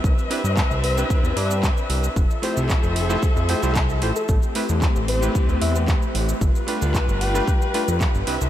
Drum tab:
HH |--o---o---o---o-|--o---o---o---o-|--o---o---o---o-|--o---o---o---o-|
SH |xx-xxx-xxx-xxx-x|xx-xxx-xxx-xxx-x|xx-xxx-xxx-xxx-x|xx-xxx-xxx-xxx-x|
CP |----x-------x---|----x-------x---|----x-------x---|----x-------x---|
BD |o---o---o---o---|o---o---o---o---|o---o---o---o---|o---o---o---o---|